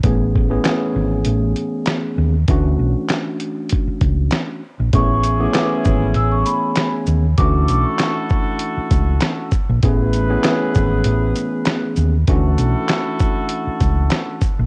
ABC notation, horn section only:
X:1
M:4/4
L:1/8
Q:"Swing 16ths" 1/4=98
K:A
V:1 name="Horn section"
z8 | z8 | [CEG]6- [CEG] z | [EFA]6- [EFA] z |
[EGB]6- [EGB] z | [EFA]6- [EFA] z |]